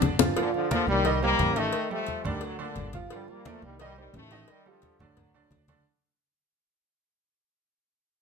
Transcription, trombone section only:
0.38 0.53 A#2 medium
0.38 0.53 D3 loud
0.54 0.70 D3 medium
0.54 0.70 F3 loud
0.71 0.87 D3 medium
0.71 0.87 F3 loud
0.89 1.20 D#3 medium
0.89 1.20 G3 loud
1.22 1.55 G3 medium
1.22 1.54 A#3 loud
1.57 1.91 D#3 medium
1.57 1.90 A3 loud
1.91 2.23 F3 medium
1.91 2.23 A3 loud
2.26 2.43 D#3 medium
2.26 2.42 G3 loud
2.44 2.58 D3 medium
2.44 2.60 F#3 loud
2.59 2.91 A#2 medium
2.59 2.91 D3 loud
3.12 3.27 D3 medium
3.12 3.27 G3 loud
3.29 3.46 G3 medium
3.29 3.46 A#3 medium
3.46 3.63 F3 medium
3.46 3.63 A3 loud
3.63 3.79 D#3 medium
3.63 3.79 G3 loud
3.81 3.96 D#3 medium
3.81 3.96 G3 loud
3.97 4.13 D#3 medium
3.97 4.13 G3 loud
4.15 4.46 D#3 medium
4.15 4.46 A3 loud
4.49 4.65 D#3 medium
4.49 4.65 G3 loud
4.66 4.98 D3 medium
4.66 5.00 F3 loud
4.99 5.68 D3 medium
4.99 5.68 F#3 medium

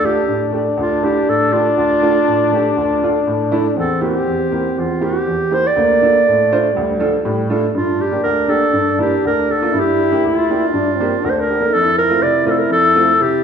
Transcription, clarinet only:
0.05 0.52 G4 medium
0.80 1.06 F4 medium
1.04 1.31 G4 medium
1.29 1.54 A4 medium
1.53 1.77 F4 medium
1.78 2.48 F4 medium
2.53 2.71 G4 medium
2.71 2.79 G4 medium
2.77 3.27 F4 medium
3.78 4.01 A4 medium
4.03 4.81 G4 medium
4.79 5.06 F4 medium
5.05 5.55 G4 medium
5.54 5.69 C5 medium
5.67 7.27 D5 medium
7.76 8.02 F4 medium
8.01 8.23 G4 medium
8.24 8.51 A#4 medium
8.50 8.99 A4 medium
9.01 9.23 G4 medium
9.27 9.53 A#4 medium
9.52 9.81 A4 medium
9.80 10.26 G4 loud
10.27 11.27 F4 medium
11.25 11.31 A#4 medium
11.30 11.42 C5 medium
11.40 11.75 A#4 medium
11.74 11.98 A4 loud
11.98 12.24 A#4 loud
12.23 12.46 D5 medium
12.47 12.61 A4 medium
12.47 12.52 A#4 medium
12.59 12.71 A#4 medium
12.72 13.24 A4 loud
13.22 13.44 G4 medium

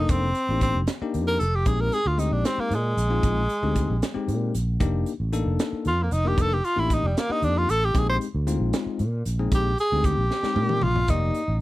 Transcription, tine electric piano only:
0.00 0.28 A#3 medium
0.00 0.28 D4 medium
0.00 0.28 D#4 medium
0.00 0.29 A4 medium
0.49 0.81 A#3 medium
0.49 0.81 D4 medium
0.49 0.81 D#4 medium
0.49 0.81 G4 medium
1.02 1.41 A#3 medium
1.02 1.41 D4 medium
1.02 1.41 D#4 medium
1.02 1.41 G4 medium
1.66 1.98 G#3 medium
1.66 1.98 C4 medium
1.66 1.98 D#4 medium
1.66 1.98 G4 medium
2.18 2.74 G#3 medium
2.18 2.74 C4 medium
2.18 2.74 D#4 medium
2.18 2.74 G4 medium
3.10 3.42 G#3 medium
3.10 3.42 C4 medium
3.10 3.42 D#4 medium
3.10 3.42 F4 medium
3.63 3.95 G#3 medium
3.63 3.95 C4 medium
3.63 3.95 D#4 medium
3.63 3.95 G4 medium
4.14 4.54 G#3 medium
4.14 4.54 C4 medium
4.14 4.55 D#4 medium
4.14 4.54 G4 medium
4.80 5.12 A#3 medium
4.80 5.12 D4 medium
4.80 5.12 D#4 medium
4.80 5.12 G4 medium
5.33 5.88 A#3 medium
5.33 5.88 D4 medium
5.33 5.88 D#4 medium
5.33 5.88 A4 loud
6.24 6.56 A#3 medium
6.24 6.56 D4 medium
6.24 6.56 D#4 medium
6.24 6.57 A#4 medium
6.76 7.08 A#3 medium
6.76 7.08 D4 medium
6.76 7.08 D#4 medium
6.76 7.08 G4 medium
7.29 7.69 A#3 medium
7.29 7.69 D4 medium
7.29 7.69 D#4 medium
7.29 7.69 G4 medium
7.94 8.26 G#3 medium
7.94 8.26 C4 medium
7.94 8.26 D#4 medium
7.94 8.26 G4 medium
8.47 9.02 G#3 medium
8.47 9.02 C4 medium
8.47 9.02 D#4 medium
8.47 9.02 F4 medium
9.39 9.70 G#3 medium
9.39 9.70 C4 medium
9.39 9.70 D#4 medium
9.39 9.70 G#4 medium
9.92 10.23 G#3 medium
9.92 10.23 C4 medium
9.92 10.23 D#4 medium
9.92 10.24 G4 medium
10.45 10.83 G#3 medium
10.45 10.83 C4 medium
10.45 10.84 D#4 medium
10.45 10.84 G4 medium
11.09 11.40 A#3 medium
11.09 11.41 D#4 medium
11.09 11.41 G4 medium
11.09 11.41 D5 medium

